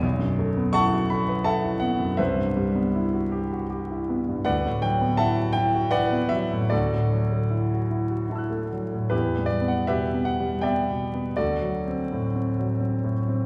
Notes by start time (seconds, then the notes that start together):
0.02 B1
0.19 F#2
0.39 A3
0.57 B3
0.73 E4 F#5 A5 C#6
0.93 F#4
1.10 A4 B5
1.29 B4
1.44 A4 E5 F#5 A5
1.63 E4
1.80 B3 F#5
2.00 F#2
2.17 C2 B4 C5 E5
2.39 G2
2.57 G3
2.75 B3
2.95 E4
3.13 F#4
3.31 G4
3.52 F#4
3.70 G4
3.90 E4
4.09 B3
4.29 G2
4.45 D2 B4 D5 F#5
4.66 A2
4.82 F#3 G5
5.01 B3
5.17 E4 E5 F#5 A5
5.37 F#4
5.53 E4 G5
5.74 F#4
5.91 E4 B4 D5 F#5
6.12 B3
6.29 F#3 E5
6.52 A2
6.70 D2 F#4 A4 D5
6.92 A2
7.13 F#3
7.32 A3
7.50 E4
7.73 F#4
7.90 E4
8.10 F#4
8.29 E4 F#5 A5
8.36 E6 F#6
8.50 A3
8.73 F#3
8.93 A2
9.10 E2 E4 G4 B4
9.39 G3
9.46 D5
9.61 B3
9.68 F#5
9.87 B2 G4 B4 E5
10.14 B3
10.25 F#5
10.40 G3
10.61 B3 D5 E5 G5
10.89 B2
11.14 B3
11.37 D2 F#4 A4 D5
11.62 F#3
11.87 C4
12.12 A2
12.35 C4
12.59 F#3
12.80 C4
13.04 A2
13.29 C4